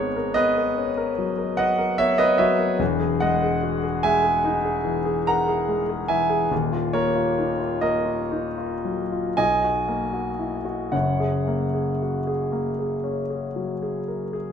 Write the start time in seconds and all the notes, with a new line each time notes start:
Already playing: G#1 G#2 B3 G#4 A#4 C#5
0.16 A#4
0.34 B3 B4 D#5
0.57 A#4
0.77 C#4
0.97 A#4
1.18 F#3
1.38 A#4
1.57 B4 D#5 F#5
1.78 A#4
1.98 B3 C#5 E5
2.18 A#4 B4 D#5
2.38 F#3 C#5 E5
2.59 A#4
2.79 E1 E2
3.00 G#4
3.20 G#3 D#5 F#5
3.43 G#4
3.63 F#4
3.83 G#4
4.03 G#3 E5 G#5
4.24 G#4
4.44 D#4
4.65 G#4
4.85 E3
5.05 G#4
5.27 A#4 F#5 A#5
5.48 G#4
5.69 G#3
5.89 G#4
6.08 E3 E5 G#5
6.30 G#4
6.50 D#1 D#2
6.73 F4
6.93 A#3 A#4 C#5
7.15 F4
7.38 D#4
7.59 F4
7.81 A#3 A#4 D#5
8.05 F4
8.31 D#4
8.58 F4
8.85 F#3
9.12 F4
9.37 B1 D#5 G#5
9.64 F#4
9.88 A#3
10.13 F#4
10.39 E4
10.65 F#4
10.92 F#1 F#2 C#5 F#5
11.20 G#4
11.48 A#3
11.74 G#4
12.02 F#4
12.27 G#4
12.52 A#3
12.79 G#4
13.04 C#4
13.30 G#4
13.56 F#3
13.83 G#4
14.08 A#4
14.33 G#4